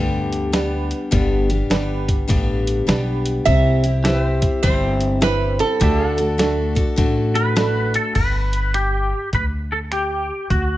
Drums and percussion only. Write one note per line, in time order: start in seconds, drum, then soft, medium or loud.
0.33 closed hi-hat medium
0.53 snare loud
0.53 closed hi-hat medium
0.91 closed hi-hat medium
1.12 kick loud
1.12 closed hi-hat medium
1.50 closed hi-hat medium
1.71 snare loud
1.71 closed hi-hat medium
2.08 kick medium
2.08 closed hi-hat medium
2.30 kick loud
2.30 closed hi-hat medium
2.67 closed hi-hat medium
2.89 snare loud
2.89 closed hi-hat medium
3.26 closed hi-hat medium
3.46 kick loud
3.46 closed hi-hat medium
3.84 closed hi-hat medium
4.05 snare loud
4.05 closed hi-hat medium
4.42 kick medium
4.42 closed hi-hat medium
4.63 kick loud
4.63 closed hi-hat medium
5.01 closed hi-hat medium
5.22 snare loud
5.22 closed hi-hat medium
5.59 closed hi-hat medium
5.81 kick loud
5.81 closed hi-hat medium
6.18 closed hi-hat medium
6.39 snare loud
6.39 closed hi-hat medium
6.76 kick medium
6.76 closed hi-hat medium
6.98 kick loud
6.98 closed hi-hat medium
7.35 closed hi-hat medium
7.57 snare loud
7.57 closed hi-hat medium
7.94 closed hi-hat medium
8.15 kick medium
8.15 closed hi-hat medium
8.15 crash medium
8.53 closed hi-hat medium
8.74 finger snap medium
8.74 closed hi-hat medium
9.33 kick loud
9.33 closed hi-hat medium
9.92 finger snap medium
9.92 closed hi-hat medium
10.50 kick medium
10.50 closed hi-hat medium